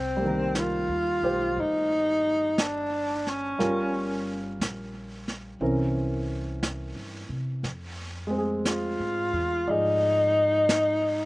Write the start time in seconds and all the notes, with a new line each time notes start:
Already playing: C2 C4
0.16 G3 A#3
0.24 D#3 A#4
0.55 brush sweep, snare, hi-hat pedal
0.59 F4
0.89 D#2
1.22 B1 G4 C5
1.56 G1 D#4, brush sweep
2.58 D4, brush sweep, snare, hi-hat pedal
3.27 C#4, snare
3.59 G1 G3 C#4 F4 A#4, brush sweep, snare
4.60 A#1, brush sweep, snare, hi-hat pedal
5.28 snare
5.61 C2 E3 C4 C#4 A#4, brush sweep
6.63 brush sweep, snare, hi-hat pedal
6.96 G2
7.29 C3
7.63 F2, brush sweep, snare
8.27 G#3 C4
8.38 G#4
8.65 F4, brush sweep, snare, hi-hat pedal
9.00 G#2
9.33 E2
9.66 G#2 F3 D#4 G#4 D5, brush sweep
10.69 brush sweep, snare, hi-hat pedal